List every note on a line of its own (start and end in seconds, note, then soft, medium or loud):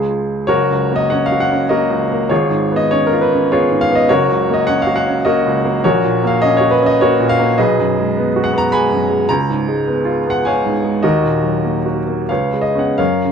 0.00 0.44 C#2 soft
0.00 0.45 G#3 soft
0.00 0.45 F4 soft
0.00 0.46 G#4 soft
0.47 2.26 F#1 medium
0.47 0.92 F#4 medium
0.47 0.92 A#4 medium
0.47 0.95 C#5 medium
0.70 1.03 C#2 soft
0.91 1.23 A#3 soft
0.96 1.11 D#5 medium
1.10 1.43 C#4 soft
1.10 1.25 F#5 medium
1.26 1.41 F5 medium
1.32 1.63 F#4 soft
1.40 1.70 F#5 medium
1.52 1.83 C#4 soft
1.69 2.02 A#3 soft
1.69 2.27 F#4 medium
1.69 2.27 A#4 medium
1.69 2.30 D#5 medium
1.90 2.22 C#2 soft
2.11 2.31 A#3 soft
2.29 4.05 G#1 medium
2.29 2.74 F4 medium
2.29 2.74 G#4 soft
2.29 2.76 C#5 medium
2.50 2.83 G#2 soft
2.72 3.04 B3 soft
2.76 2.92 D#5 medium
2.91 3.24 C#4 soft
2.91 3.07 C#5 medium
3.07 3.22 A#4 medium
3.13 3.44 F4 soft
3.21 3.51 B4 medium
3.33 3.63 C#4 soft
3.52 3.82 B3 soft
3.52 3.79 F4 medium
3.52 3.79 G#4 medium
3.52 3.80 C#5 medium
3.71 4.01 G#2 soft
3.81 3.95 F5 medium
3.91 4.09 B3 soft
3.95 4.09 D#5 medium
4.09 5.80 F#1 medium
4.09 4.50 F#4 medium
4.09 4.50 A#4 medium
4.09 4.52 C#5 medium
4.30 4.60 C#2 soft
4.49 4.79 A#3 soft
4.54 4.67 D#5 medium
4.67 4.98 C#4 soft
4.67 4.81 F#5 medium
4.82 4.96 F5 medium
4.87 5.17 F#4 soft
4.96 5.24 F#5 medium
5.07 5.37 C#4 soft
5.25 5.56 A#3 soft
5.25 5.80 F#4 medium
5.25 5.80 A#4 medium
5.25 5.84 D#5 medium
5.46 5.77 C#2 soft
5.65 5.84 A#3 medium
5.84 7.55 A#1 medium
5.84 6.25 F#4 medium
5.84 6.25 A#4 medium
5.84 6.27 C#5 medium
6.05 6.34 A#2 soft
6.23 6.53 A#3 soft
6.23 6.41 F5 medium
6.42 6.73 C#4 soft
6.42 6.56 D#5 medium
6.57 6.92 F#4 medium
6.57 6.71 C#5 medium
6.71 6.85 B4 medium
6.82 7.12 C#4 soft
6.86 7.00 D#5 medium
7.01 7.32 A#3 soft
7.01 7.28 F#4 medium
7.01 7.28 A#4 medium
7.01 7.29 C#5 medium
7.20 7.51 A#2 soft
7.29 7.58 F5 medium
7.39 7.58 A#3 soft
7.58 9.25 B1 medium
7.58 8.39 G#4 medium
7.58 8.39 B4 medium
7.58 8.43 D#5 medium
7.79 8.08 F#2 soft
7.98 8.27 G#3 soft
8.17 8.46 B3 medium
8.36 8.65 F#4 soft
8.44 8.57 F#5 medium
8.53 8.83 B3 medium
8.58 8.71 A#5 medium
8.72 9.03 G#3 soft
8.72 9.26 F#5 medium
8.72 9.26 G#5 medium
8.72 9.30 B5 medium
8.92 9.22 F#2 soft
9.09 9.29 G#3 soft
9.29 11.00 C#2 medium
9.29 10.30 A#5 medium
9.50 9.80 G#2 soft
9.68 9.98 G#3 soft
9.87 10.18 B3 soft
10.05 10.37 F4 soft
10.27 10.57 B3 soft
10.27 10.45 F#5 medium
10.45 10.77 G#3 soft
10.45 10.73 C#5 medium
10.45 10.73 F5 medium
10.45 10.74 G#5 medium
10.65 10.96 G#2 soft
10.84 11.03 G#3 soft
11.03 12.26 D#2 medium
11.03 11.84 F#4 medium
11.03 12.26 A#4 medium
11.03 12.29 D#5 medium
11.23 11.56 A#2 soft
11.43 11.76 F#3 soft
11.64 11.98 A#3 soft
11.86 12.21 F#4 soft
12.07 12.29 A#3 soft
12.29 12.98 C#2 soft
12.29 12.61 B4 soft
12.29 12.62 C#5 soft
12.29 12.63 F5 medium
12.53 12.90 G#3 soft
12.61 12.80 D#5 medium
12.75 12.97 B3 soft
12.75 12.97 C#4 soft
12.75 12.99 F#5 medium
12.98 13.32 F#2 soft
12.98 13.32 A#4 medium
12.98 13.32 C#5 medium
12.98 13.32 F5 medium
13.25 13.32 C#3 soft